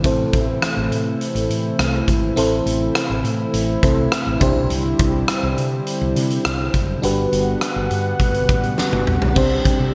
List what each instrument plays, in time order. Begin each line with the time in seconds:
Already playing: analog synth pad C3 E3 A3
0.04 fretless electric bass A1, fm electric piano C4 E4 A4 C5, analog synth pad E4, kick, closed hi-hat
0.33 fretless electric bass A1, kick, closed hi-hat
0.62 cross-stick, closed hi-hat
0.77 fretless electric bass A1
0.91 fretless electric bass A2, closed hi-hat
1.21 closed hi-hat
1.35 fretless electric bass A1, closed hi-hat
1.50 fretless electric bass A2, closed hi-hat
1.79 fretless electric bass C2, cross-stick, closed hi-hat
2.08 fretless electric bass G#1, kick, closed hi-hat
2.36 fretless electric bass A1, fm electric piano C4 E4 A4 C5, closed hi-hat
2.66 fretless electric bass A1, closed hi-hat
2.95 cross-stick, closed hi-hat
3.10 fretless electric bass A1
3.24 fretless electric bass A2, closed hi-hat
3.53 fretless electric bass A1, closed hi-hat
3.83 fretless electric bass C2, fm electric piano C4 E4 A4 C5, kick, closed hi-hat
4.12 cross-stick, closed hi-hat
4.27 fretless electric bass A1
4.40 fretless electric bass C2, analog synth pad D3 G3 C4, fm electric piano D4 E4 G4 C5, kick, closed hi-hat
4.56 fretless electric bass B1
4.70 fretless electric bass C2, closed hi-hat
4.99 fretless electric bass C2, kick, closed hi-hat
5.28 cross-stick, closed hi-hat
5.43 fretless electric bass C2
5.58 fretless electric bass C3, closed hi-hat
5.87 closed hi-hat
6.01 fretless electric bass C2
6.16 fretless electric bass C3, closed hi-hat
6.30 closed hi-hat
6.45 fretless electric bass C2, cross-stick, closed hi-hat
6.74 fretless electric bass F#1, kick, closed hi-hat
7.02 fretless electric bass G1, analog synth pad G3 B3 F#5, fm electric piano D4 F#4 G4 B4, closed hi-hat
7.32 fretless electric bass G1, closed hi-hat
7.61 cross-stick, closed hi-hat
7.76 fretless electric bass G1
7.91 fretless electric bass G2, closed hi-hat
8.20 fretless electric bass G1, kick, closed hi-hat
8.34 closed hi-hat
8.49 fretless electric bass A1, kick, closed hi-hat
8.63 closed hi-hat
8.78 snare
8.93 fretless electric bass G1, high tom
9.07 fretless electric bass A#1, mid tom
9.21 fretless electric bass B1, floor tom
9.35 fretless electric bass C2, analog synth pad D3 G3 C4 G4, fm electric piano C4 D4 G4 C5, kick, crash
9.65 kick, closed hi-hat
9.80 fretless electric bass C3